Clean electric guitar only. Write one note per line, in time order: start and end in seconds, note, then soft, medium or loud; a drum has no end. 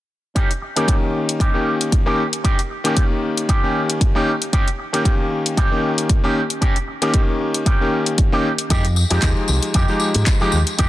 0.35 0.50 C#4 loud
0.35 0.50 D#4 medium
0.35 0.50 G4 loud
0.62 muted clean electric guitar stroke soft
0.76 0.95 C#4 medium
0.76 0.95 D#4 medium
0.76 0.95 G4 medium
1.14 muted clean electric guitar stroke soft
1.40 1.73 C#4 medium
1.40 1.73 D#4 medium
1.40 1.74 G4 medium
2.06 2.25 C#4 medium
2.06 2.26 D#4 medium
2.06 2.26 G4 medium
2.44 2.58 C#4 loud
2.44 2.59 D#4 medium
2.44 2.59 G4 loud
2.70 muted clean electric guitar stroke soft
2.85 3.04 C#4 medium
2.85 3.04 D#4 medium
2.85 3.04 G4 medium
3.22 muted clean electric guitar stroke soft
3.48 3.82 C#4 medium
3.48 3.82 D#4 medium
3.48 3.82 G4 medium
4.15 4.34 C#4 medium
4.15 4.34 D#4 medium
4.15 4.34 G4 medium
4.53 4.67 C#4 loud
4.53 4.67 D#4 medium
4.53 4.68 G4 loud
4.79 muted clean electric guitar stroke soft
4.93 5.12 C#4 medium
4.93 5.12 D#4 medium
4.93 5.12 G4 medium
5.31 muted clean electric guitar stroke soft
5.57 5.90 C#4 medium
5.57 5.91 D#4 medium
5.57 5.91 G4 medium
6.23 6.43 C#4 medium
6.23 6.43 D#4 medium
6.23 6.43 G4 medium
6.61 6.76 C#4 loud
6.61 6.76 D#4 medium
6.61 6.76 G4 loud
6.88 muted clean electric guitar stroke soft
7.02 7.21 C#4 medium
7.02 7.21 D#4 medium
7.02 7.21 G4 medium
7.40 muted clean electric guitar stroke soft
7.65 7.99 C#4 medium
7.65 7.99 D#4 medium
7.65 7.99 G4 medium
8.33 8.52 C#4 medium
8.33 8.52 D#4 medium
8.33 8.52 G4 medium
8.70 8.85 G#3 loud
8.70 8.85 D#4 medium
8.70 8.85 G4 loud
8.96 muted clean electric guitar stroke soft
9.10 9.30 G#3 medium
9.10 9.30 D#4 medium
9.10 9.30 G4 medium
9.48 muted clean electric guitar stroke soft
9.74 10.08 G#3 medium
9.74 10.08 D#4 medium
9.74 10.08 G4 medium
10.40 10.60 G#3 medium
10.40 10.60 D#4 medium
10.40 10.60 G4 medium
10.78 10.89 G#3 loud
10.78 10.89 D#4 medium
10.78 10.89 G4 loud